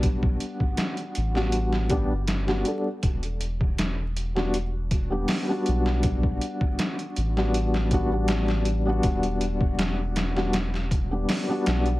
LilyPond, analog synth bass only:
\new Staff \with { instrumentName = "Analog synth bass" } { \clef bass \time 4/4 \key e \minor \tempo 4 = 80 b,,8 r4 a,,4~ a,,16 g,,8. r8 | e,,2. r8 b,,8~ | b,,8 r4 a,,2~ a,,8 | e,,2. r8 b,,8 | }